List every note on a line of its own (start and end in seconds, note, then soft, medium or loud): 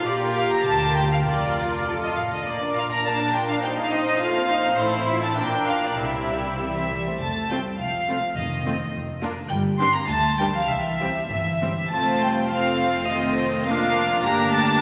0.07 0.62 A#1 medium
0.07 0.62 A#2 medium
0.07 0.61 F4 medium
0.07 1.26 G4 medium
0.07 0.61 A#4 medium
0.07 0.15 D5 medium
0.36 0.50 F5 medium
0.52 0.66 A#5 medium
0.65 1.26 D2 soft
0.65 1.26 D2 medium
0.65 1.24 F4 medium
0.65 1.24 A#4 medium
0.65 0.94 A5 medium
0.95 1.01 G5 medium
1.12 1.17 F5 medium
1.25 2.27 F1 soft
1.25 1.80 F2 soft
1.25 2.15 F4 soft
1.25 1.85 F4 soft
1.25 1.85 A#4 soft
1.25 1.85 D5 medium
1.86 2.14 F2 soft
1.86 2.25 F4 soft
1.86 2.26 A4 soft
2.03 2.16 D#5 soft
2.17 2.32 A2 soft
2.17 2.23 F5 soft
2.33 2.47 D3 soft
2.33 2.47 D#5 soft
2.46 4.75 A#1 soft
2.46 4.75 A#2 soft
2.46 2.60 A#3 soft
2.46 3.60 A#4 soft
2.46 2.76 D5 medium
2.61 2.76 D4 soft
2.77 2.91 F4 soft
2.77 2.91 F5 medium
2.91 3.06 D4 soft
2.91 3.06 A#5 medium
3.05 3.20 A#3 soft
3.05 3.60 D4 soft
3.05 3.35 A5 medium
3.20 3.35 D4 soft
3.34 3.49 F4 soft
3.34 3.49 G5 medium
3.49 3.64 D4 soft
3.49 3.55 F5 medium
3.63 3.77 G3 soft
3.63 4.22 D#4 medium
3.63 5.37 C5 medium
3.63 3.69 G5 medium
3.78 3.93 A#3 soft
3.78 3.93 F5 medium
3.92 4.07 C4 soft
3.92 4.21 D#5 medium
4.08 4.22 D#4 medium
4.21 4.35 A3 medium
4.21 4.50 F4 medium
4.21 4.79 F5 medium
4.36 4.50 C4 soft
4.51 4.65 D#4 soft
4.51 4.79 D#4 soft
4.65 4.79 C4 soft
4.78 5.37 A1 soft
4.78 5.37 A2 medium
4.78 4.92 A3 medium
4.78 5.38 E4 medium
4.78 5.07 C5 medium
4.94 5.08 C4 soft
5.07 5.23 F4 soft
5.07 5.22 E5 medium
5.24 5.38 C4 soft
5.24 5.38 A5 medium
5.37 5.99 A#1 medium
5.37 5.99 A#2 soft
5.37 5.52 A#3 soft
5.37 5.98 D4 soft
5.37 5.99 A#4 soft
5.37 5.67 G5 medium
5.53 5.68 D4 soft
5.68 5.84 A#3 soft
5.68 5.83 F5 medium
5.83 5.99 D4 soft
5.83 6.00 D5 medium
5.98 6.98 C2 soft
5.98 6.53 C3 soft
5.98 6.13 G3 soft
5.98 6.91 E4 soft
5.98 7.01 G4 soft
5.98 6.60 E5 soft
6.15 6.30 C4 soft
6.30 6.45 G3 soft
6.45 6.60 C4 soft
6.60 6.69 C3 soft
6.60 6.90 E3 soft
6.60 6.75 G3 soft
6.60 7.18 E5 soft
6.75 6.91 C4 soft
6.91 6.97 E3 soft
6.91 7.06 G3 soft
7.06 7.13 A3 soft
7.06 7.21 C4 soft
7.21 7.68 F1 soft
7.21 7.50 A3 soft
7.21 7.51 A5 medium
7.50 7.80 G3 soft
7.50 7.59 A3 soft
7.50 7.59 C4 soft
7.50 7.59 F4 soft
7.50 7.59 C5 soft
7.50 7.58 G5 soft
7.80 8.25 C2 soft
7.80 8.37 F3 soft
7.80 8.36 F5 medium
8.09 8.17 A3 soft
8.09 8.17 C4 soft
8.09 8.17 F4 soft
8.09 8.17 C5 soft
8.37 8.82 F1 medium
8.37 8.90 F2 soft
8.37 8.94 D#3 soft
8.37 8.93 D#5 soft
8.65 8.74 A3 soft
8.65 8.73 C4 soft
8.65 8.75 F4 soft
8.65 8.74 C5 soft
8.94 9.39 F1 medium
9.22 9.31 A#3 soft
9.22 9.31 D4 soft
9.22 9.30 F4 soft
9.22 9.30 A#4 soft
9.50 9.97 G1 medium
9.50 9.78 G3 medium
9.50 9.58 G5 medium
9.79 9.88 G3 soft
9.79 9.85 C4 medium
9.79 9.88 D4 medium
9.79 9.88 G4 soft
9.79 9.89 A#4 soft
9.79 9.94 C6 medium
9.94 10.09 A#3 soft
9.94 10.10 A#5 medium
10.09 10.57 D2 medium
10.09 10.38 A3 medium
10.09 10.38 A5 medium
10.38 10.54 G3 medium
10.38 10.48 G3 soft
10.38 10.49 D4 soft
10.38 10.47 G4 soft
10.38 10.47 A#4 soft
10.38 10.45 G5 medium
10.53 10.60 F3 medium
10.53 10.70 F5 medium
10.69 11.19 C2 medium
10.69 11.30 E3 medium
10.69 11.31 E5 medium
11.01 11.10 G3 soft
11.01 11.10 C4 soft
11.01 11.09 G4 soft
11.01 11.09 C5 soft
11.31 11.80 G1 soft
11.31 11.91 E3 soft
11.31 11.91 E5 medium
11.63 11.71 G3 soft
11.63 11.71 C4 soft
11.63 11.71 G4 soft
11.63 11.71 C5 soft
11.92 14.20 F1 soft
11.92 12.22 A3 medium
11.92 12.48 A3 soft
11.92 12.48 C4 soft
11.92 12.48 F4 soft
11.92 12.48 C5 soft
11.92 12.22 A5 medium
12.22 12.52 G3 soft
12.22 12.52 G5 medium
12.51 13.10 F3 soft
12.51 13.08 A3 soft
12.51 13.09 C4 soft
12.51 13.09 F4 soft
12.51 13.09 C5 soft
12.51 13.09 F5 medium
13.09 13.66 D#3 medium
13.09 13.66 A3 soft
13.09 13.66 C4 medium
13.09 13.67 F4 soft
13.09 13.67 C5 soft
13.09 13.68 D#5 medium
13.67 14.24 F3 medium
13.67 14.22 A#3 medium
13.67 14.22 D4 medium
13.67 14.23 F4 medium
13.67 14.22 A#4 medium
13.67 14.23 F5 medium
14.23 14.81 G1 medium
14.23 14.52 A#3 medium
14.23 14.80 A#3 medium
14.23 14.80 D4 medium
14.23 14.80 G4 medium
14.23 14.80 A#4 medium
14.23 14.52 A#5 medium
14.51 14.80 A3 medium
14.51 14.81 A5 medium